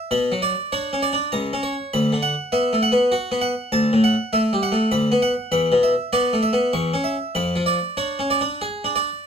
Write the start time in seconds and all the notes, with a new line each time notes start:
Already playing: E5
0.11 B2 B5
0.32 F#3
0.42 D5
0.72 D4 C#5
0.93 C#4
1.02 D5
1.13 D4
1.32 C#2 A#5
1.53 C#4
1.63 C#5
1.94 D2 B5
2.13 D3
2.23 F#5
2.52 B3 E5
2.73 A3
2.83 F#5
2.92 B3
3.12 F#4
3.32 B3
3.41 F#5
3.72 D2 A5
3.93 A2
4.04 F#5
4.33 A3 E5
4.53 G3
4.63 F#5
4.72 A3
4.92 D2 B5
5.12 B3
5.22 F#5
5.52 E2 B5
5.72 B2
5.83 E5
6.13 B3 D5
6.33 A3
6.43 E5
6.53 B3
6.73 E2 C#6
6.94 C#4
7.04 E5
7.35 F2 B5
7.56 F3
7.66 D5
7.97 D4 C#5
8.19 C#4
8.30 D5
8.41 D4
8.62 G#4
8.84 D4
8.96 D5